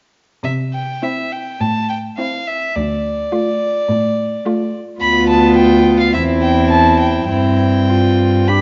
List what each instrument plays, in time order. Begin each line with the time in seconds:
0.44 cello C3, violin E5
0.73 violin G5
1.02 viola C4, violin E4 E5
1.32 violin G5
1.60 cello A2, violin A5
1.90 violin G5
2.18 viola C4, violin E4 F5
2.47 violin E5
2.76 cello D2, violin D5
3.32 viola A3, violin F4
3.89 cello A2
4.46 viola A3, violin F4
5.01 cello D2, viola B3, violin F4 B5
5.30 violin A5
5.57 violin G5
6.00 violin F5
6.14 cello E2, viola C4, violin E4 E5
6.42 violin G5
6.71 violin A5
7.00 violin G5
7.30 cello G2, viola C4, violin E4 G5
7.89 violin F4
8.48 viola D4, violin G4 B5